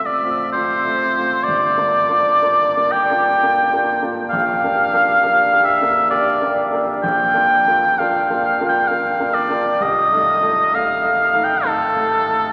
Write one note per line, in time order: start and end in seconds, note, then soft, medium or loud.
0.00 1.48 A1 medium
0.00 0.23 A3 soft
0.00 0.24 C4 soft
0.00 0.24 F4 medium
0.06 0.52 D5 medium
0.23 0.51 A3 soft
0.23 0.51 C4 soft
0.23 0.52 F4 soft
0.52 0.82 A3 soft
0.52 0.82 C4 soft
0.52 0.82 F4 soft
0.52 1.44 C5 medium
0.85 1.12 A3 soft
0.85 1.12 C4 soft
0.85 1.12 F4 medium
1.17 1.44 A3 soft
1.17 1.44 C4 soft
1.17 1.44 F4 soft
1.43 2.93 D5 loud
1.48 1.77 G1 medium
1.77 2.06 A#3 soft
1.77 2.06 D4 soft
1.77 2.06 F4 soft
2.09 2.39 A#3 soft
2.09 2.39 D4 medium
2.09 2.39 F4 medium
2.42 2.73 A#3 soft
2.42 2.73 D4 medium
2.42 2.73 F4 medium
2.77 3.06 A#3 soft
2.77 3.07 D4 soft
2.77 3.07 F4 medium
2.92 4.04 G5 loud
3.10 3.39 A#3 soft
3.10 3.39 D4 soft
3.10 3.39 F4 medium
3.43 3.70 A#3 soft
3.43 3.70 D4 soft
3.43 3.70 F4 medium
3.73 4.00 A#3 soft
3.73 4.00 D4 medium
3.73 4.01 F4 medium
4.03 4.29 A#3 medium
4.03 4.29 D4 soft
4.03 4.30 F4 medium
4.30 4.61 A#1 medium
4.30 5.66 F5 loud
4.64 4.90 A#3 soft
4.64 4.90 D4 medium
4.64 4.91 G4 medium
4.94 5.20 A#3 medium
4.94 5.20 D4 medium
4.94 5.20 G4 medium
5.24 5.50 A#3 medium
5.24 5.50 D4 medium
5.24 5.50 G4 medium
5.52 5.79 A#3 medium
5.52 5.79 D4 medium
5.52 5.79 G4 medium
5.65 6.10 E5 loud
5.81 6.09 A#3 medium
5.81 6.08 D4 medium
5.81 6.09 G4 medium
6.10 6.38 A#3 medium
6.10 6.39 D4 medium
6.10 6.39 G4 medium
6.10 6.55 D5 loud
6.42 6.69 A#3 medium
6.42 6.69 D4 medium
6.42 6.70 G4 medium
6.73 7.00 A#3 medium
6.73 7.01 D4 soft
6.73 7.01 G4 medium
7.03 7.34 A#1 medium
7.03 8.00 G5 loud
7.34 7.63 A#3 soft
7.34 7.63 D4 medium
7.34 7.63 F4 medium
7.67 7.96 A#3 medium
7.67 7.96 D4 soft
7.67 7.96 F4 medium
7.99 8.28 A#3 medium
7.99 8.28 D4 medium
7.99 8.28 F4 medium
7.99 8.68 F5 medium
8.30 8.58 A#3 medium
8.30 8.58 D4 soft
8.30 8.58 F4 medium
8.61 8.88 A#3 medium
8.61 8.88 D4 soft
8.61 8.88 F4 medium
8.69 8.89 G5 loud
8.87 9.17 A#3 soft
8.87 9.17 D4 soft
8.87 9.18 F4 medium
8.87 9.36 F5 loud
9.19 9.47 A#3 soft
9.19 9.48 D4 medium
9.19 9.48 F4 medium
9.34 9.84 D5 medium
9.50 9.78 A#3 soft
9.50 9.78 D4 soft
9.50 9.78 F4 medium
9.80 10.11 C2 medium
9.80 10.76 D#5 loud
10.12 10.40 A3 soft
10.12 10.40 D#4 medium
10.12 10.40 A4 medium
10.41 10.70 A3 soft
10.41 10.70 D#4 soft
10.41 10.70 A4 medium
10.73 11.01 A3 soft
10.73 11.01 D#4 medium
10.73 11.01 A4 medium
10.73 11.45 F5 loud
11.02 11.31 A3 soft
11.02 11.31 D#4 soft
11.02 11.32 A4 medium
11.33 11.62 A3 soft
11.33 11.62 D#4 soft
11.33 11.63 A4 medium
11.44 11.67 G5 medium
11.64 11.94 A3 soft
11.64 11.94 D#4 soft
11.64 11.94 A4 soft
11.64 12.53 A4 loud
11.96 12.25 A3 soft
11.96 12.26 D#4 soft
11.96 12.26 A4 medium
12.29 12.53 A3 soft
12.29 12.53 D#4 soft
12.29 12.53 A4 medium